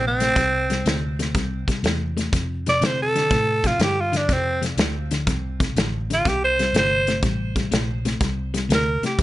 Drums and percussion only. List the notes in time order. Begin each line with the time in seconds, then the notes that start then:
0.20 snare, closed hi-hat
0.36 kick, snare, closed hi-hat
0.70 snare, closed hi-hat
0.86 snare, closed hi-hat
1.19 snare, closed hi-hat
1.35 kick, snare, closed hi-hat
1.68 kick, snare, closed hi-hat
1.84 snare, closed hi-hat
2.17 snare, closed hi-hat
2.33 kick, snare, closed hi-hat
2.66 snare, closed hi-hat
2.82 snare, closed hi-hat
3.16 snare, closed hi-hat
3.31 kick, snare, closed hi-hat
3.64 kick, snare, closed hi-hat
3.79 snare, closed hi-hat
4.13 snare, closed hi-hat
4.29 kick, snare, closed hi-hat
4.63 snare, closed hi-hat
4.78 snare, closed hi-hat
5.11 snare, closed hi-hat
5.27 kick, snare, closed hi-hat
5.60 kick, snare, closed hi-hat
5.76 snare, closed hi-hat
6.10 snare, closed hi-hat
6.25 kick, snare, closed hi-hat
6.59 snare, closed hi-hat
6.74 snare, closed hi-hat
7.07 snare, closed hi-hat
7.23 kick, snare, closed hi-hat
7.56 kick, snare, closed hi-hat
7.72 snare, closed hi-hat
8.05 snare, closed hi-hat
8.21 kick, snare, closed hi-hat
8.54 snare, closed hi-hat
8.70 snare, closed hi-hat
9.03 snare, closed hi-hat
9.19 kick, closed hi-hat